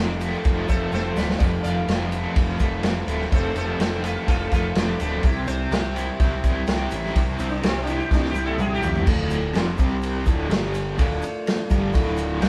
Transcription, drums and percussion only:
0.20 ride medium
0.20 shaker medium
0.33 shaker soft
0.44 kick loud
0.44 ride medium
0.44 shaker medium
0.68 kick medium
0.68 ride medium
0.68 shaker loud
0.92 snare medium
0.92 shaker medium
1.16 snare medium
1.16 shaker loud
1.29 snare medium
1.40 kick loud
1.40 ride medium
1.40 shaker medium
1.64 ride medium
1.64 shaker loud
1.88 snare loud
1.88 ride medium
1.88 shaker medium
2.12 ride medium
2.12 shaker medium
2.35 kick loud
2.35 ride loud
2.35 shaker medium
2.59 kick medium
2.59 ride medium
2.59 shaker medium
2.83 snare loud
2.83 ride medium
2.83 shaker medium
3.08 ride medium
3.08 shaker medium
3.21 snare soft
3.32 kick loud
3.32 ride loud
3.32 shaker medium
3.55 ride medium
3.55 shaker medium
3.80 snare loud
3.80 ride loud
3.80 shaker medium
4.04 ride medium
4.04 shaker medium
4.28 kick loud
4.28 ride loud
4.28 shaker medium
4.51 kick medium
4.51 ride medium
4.51 shaker medium
4.75 snare loud
4.75 ride loud
4.75 shaker medium
5.00 ride medium
5.00 shaker loud
5.23 kick loud
5.23 ride medium
5.23 shaker medium
5.47 ride medium
5.47 shaker loud
5.71 snare loud
5.71 ride medium
5.71 shaker medium
5.96 ride medium
5.96 shaker loud
6.20 kick loud
6.20 ride medium
6.20 shaker medium
6.44 kick medium
6.44 ride medium
6.44 shaker medium
6.67 snare loud
6.67 ride medium
6.67 shaker medium
6.90 ride medium
6.90 shaker medium
7.05 snare soft
7.15 kick loud
7.15 ride loud
7.15 shaker medium
7.39 ride medium
7.39 shaker medium
7.51 shaker soft
7.63 snare loud
7.63 ride loud
7.63 shaker medium
7.87 ride medium
7.87 shaker medium
7.99 shaker soft
8.11 kick loud
8.11 snare medium
8.11 shaker medium
8.25 snare medium
8.35 shaker medium
8.47 high tom medium
8.59 mid tom medium
8.59 shaker medium
8.82 floor tom loud
8.82 shaker medium
8.95 floor tom medium
8.95 shaker soft
9.06 kick loud
9.06 crash loud
9.06 shaker medium
9.30 ride medium
9.30 shaker loud
9.54 snare loud
9.54 ride medium
9.54 shaker medium
9.78 kick loud
9.78 ride medium
9.78 shaker medium
10.02 ride medium
10.02 shaker medium
10.25 kick loud
10.25 ride medium
10.25 shaker medium
10.50 snare loud
10.50 ride medium
10.50 shaker medium
10.74 ride medium
10.74 shaker medium
10.98 kick loud
10.98 ride loud
10.98 shaker medium
11.22 ride medium
11.22 shaker medium
11.47 snare loud
11.47 ride medium
11.47 shaker medium
11.70 kick loud
11.70 ride medium
11.70 shaker medium
11.93 kick loud
11.93 ride loud
11.93 shaker medium
12.17 ride medium
12.17 shaker loud
12.41 snare loud
12.41 ride medium
12.41 shaker medium

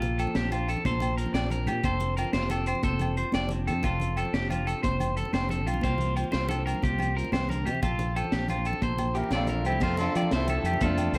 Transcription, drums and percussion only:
0.02 closed hi-hat soft
0.02 low conga medium
0.10 low conga soft
0.19 closed hi-hat soft
0.19 low agogo medium
0.27 low conga medium
0.35 snare medium
0.35 closed hi-hat medium
0.35 high conga medium
0.35 low conga soft
0.52 closed hi-hat soft
0.52 low conga medium
0.52 low agogo medium
0.68 closed hi-hat soft
0.68 low agogo medium
0.77 low conga medium
0.85 kick medium
0.85 closed hi-hat medium
0.85 high conga medium
0.85 low conga soft
0.93 low conga soft
1.00 closed hi-hat soft
1.00 low conga medium
1.00 low agogo medium
1.18 closed hi-hat soft
1.26 low conga medium
1.34 snare medium
1.34 closed hi-hat medium
1.34 high conga soft
1.34 low agogo medium
1.50 closed hi-hat soft
1.50 low conga medium
1.67 closed hi-hat soft
1.67 low conga medium
1.67 low agogo medium
1.83 kick medium
1.83 closed hi-hat medium
1.83 high conga medium
1.83 low agogo medium
2.00 closed hi-hat soft
2.00 low conga medium
2.17 closed hi-hat soft
2.17 low conga soft
2.17 low agogo medium
2.24 low conga medium
2.33 snare medium
2.33 closed hi-hat medium
2.33 high conga medium
2.50 closed hi-hat soft
2.50 low conga medium
2.50 low agogo medium
2.66 closed hi-hat soft
2.66 low agogo medium
2.75 low conga medium
2.83 kick medium
2.83 closed hi-hat medium
2.83 high conga medium
2.83 low conga soft
2.99 closed hi-hat soft
2.99 low conga medium
2.99 low agogo medium
3.17 closed hi-hat soft
3.24 low conga medium
3.32 snare medium
3.32 closed hi-hat medium
3.32 high conga medium
3.32 low agogo medium
3.49 closed hi-hat soft
3.49 low conga medium
3.67 closed hi-hat soft
3.67 low agogo medium
3.83 kick medium
3.83 closed hi-hat medium
3.83 high conga medium
3.83 low agogo medium
4.00 closed hi-hat soft
4.00 low conga medium
4.17 closed hi-hat soft
4.17 low conga soft
4.17 low agogo medium
4.25 low conga medium
4.34 snare medium
4.34 closed hi-hat medium
4.34 high conga medium
4.50 closed hi-hat soft
4.50 low conga medium
4.50 low agogo medium
4.67 closed hi-hat soft
4.67 low agogo medium
4.83 kick medium
4.83 closed hi-hat medium
4.83 high conga medium
4.83 low conga soft
5.00 closed hi-hat soft
5.00 low conga medium
5.00 low agogo medium
5.17 closed hi-hat soft
5.25 low conga medium
5.33 snare medium
5.33 closed hi-hat medium
5.33 high conga medium
5.33 low agogo medium
5.49 closed hi-hat soft
5.49 low conga medium
5.67 closed hi-hat soft
5.67 low agogo medium
5.74 low conga medium
5.81 kick medium
5.81 closed hi-hat medium
5.81 high conga medium
5.81 low agogo medium
5.98 closed hi-hat soft
5.98 low conga medium
6.17 closed hi-hat soft
6.17 low agogo medium
6.24 low conga medium
6.32 snare medium
6.32 closed hi-hat medium
6.32 high conga medium
6.49 closed hi-hat soft
6.49 low conga medium
6.49 low agogo medium
6.67 closed hi-hat soft
6.67 low agogo medium
6.75 low conga medium
6.83 kick medium
6.83 closed hi-hat medium
6.83 high conga medium
6.83 low conga soft
6.99 closed hi-hat soft
6.99 low conga medium
6.99 low agogo medium
7.18 closed hi-hat soft
7.24 low conga medium
7.32 snare medium
7.32 closed hi-hat medium
7.32 high conga medium
7.32 low agogo medium
7.49 closed hi-hat soft
7.49 low conga medium
7.66 closed hi-hat soft
7.66 low agogo medium
7.75 low conga medium
7.83 kick medium
7.83 closed hi-hat medium
7.83 high conga medium
7.83 low agogo medium
7.99 closed hi-hat soft
7.99 low conga medium
8.16 closed hi-hat soft
8.16 low agogo medium
8.24 low conga medium
8.32 snare medium
8.32 closed hi-hat medium
8.32 high conga medium
8.41 low conga soft
8.48 closed hi-hat soft
8.48 low conga loud
8.48 low agogo medium
8.57 low conga soft
8.65 closed hi-hat soft
8.65 low agogo medium
8.73 low conga medium
8.82 kick medium
8.82 closed hi-hat medium
8.82 high conga loud
8.82 low conga soft
8.98 closed hi-hat soft
8.98 low conga medium
8.98 low agogo medium
9.07 low conga soft
9.15 closed hi-hat soft
9.24 low conga medium
9.31 snare medium
9.31 closed hi-hat medium
9.31 high conga loud
9.31 low agogo medium
9.47 closed hi-hat soft
9.47 low conga medium
9.65 closed hi-hat soft
9.65 low agogo medium
9.72 low conga medium
9.80 kick medium
9.80 crash medium
9.80 high conga medium
9.80 low agogo medium
9.97 closed hi-hat soft
9.97 low conga medium
10.15 closed hi-hat soft
10.15 low conga soft
10.15 low agogo medium
10.23 low conga medium
10.31 snare medium
10.31 closed hi-hat medium
10.31 high conga medium
10.31 low conga soft
10.48 closed hi-hat medium
10.48 low conga medium
10.48 low agogo medium
10.65 closed hi-hat medium
10.65 low conga soft
10.65 low agogo medium
10.73 low conga medium
10.81 kick medium
10.81 closed hi-hat medium
10.81 high conga medium
10.81 low conga soft
10.98 closed hi-hat medium
10.98 low conga medium
10.98 low agogo medium
11.14 closed hi-hat soft

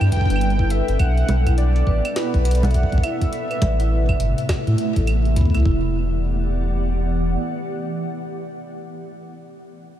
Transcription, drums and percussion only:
0.01 closed hi-hat soft
0.01 claves medium
0.12 kick medium
0.12 closed hi-hat medium
0.17 kick medium
0.21 kick medium
0.26 kick loud
0.30 closed hi-hat medium
0.36 claves medium
0.41 closed hi-hat medium
0.50 closed hi-hat soft
0.59 kick loud
0.70 closed hi-hat medium
0.88 closed hi-hat medium
0.99 kick loud
0.99 closed hi-hat medium
0.99 claves medium
1.17 closed hi-hat soft
1.29 closed hi-hat medium
1.29 low conga loud
1.47 kick loud
1.47 closed hi-hat soft
1.47 claves medium
1.58 closed hi-hat medium
1.76 closed hi-hat soft
1.87 kick loud
2.05 closed hi-hat medium
2.05 claves medium
2.16 snare loud
2.16 closed hi-hat medium
2.34 kick loud
2.34 closed hi-hat soft
2.45 closed hi-hat medium
2.45 claves medium
2.51 closed hi-hat medium
2.55 closed hi-hat medium
2.63 closed hi-hat medium
2.63 closed hi-hat soft
2.63 low conga loud
2.71 kick medium
2.71 closed hi-hat soft
2.74 closed hi-hat medium
2.83 kick medium
2.92 kick medium
2.92 closed hi-hat soft
2.98 kick loud
3.04 closed hi-hat medium
3.04 claves medium
3.21 kick loud
3.21 closed hi-hat medium
3.33 closed hi-hat medium
3.51 closed hi-hat soft
3.51 claves medium
3.62 kick loud
3.62 closed hi-hat loud
3.62 low conga medium
3.80 closed hi-hat medium
4.09 kick loud
4.09 claves medium
4.20 closed hi-hat medium
4.38 closed hi-hat medium
4.49 kick loud
4.49 snare loud
4.49 closed hi-hat medium
4.49 claves medium
4.67 closed hi-hat soft
4.78 closed hi-hat loud
4.96 kick loud
4.96 closed hi-hat medium
5.07 closed hi-hat medium
5.07 claves medium
5.25 closed hi-hat soft
5.36 kick loud
5.36 closed hi-hat loud
5.41 kick medium
5.45 kick medium
5.50 kick medium
5.55 kick medium
5.55 closed hi-hat medium
5.55 claves medium
5.57 kick soft
5.60 kick soft
5.63 kick soft
5.66 kick loud

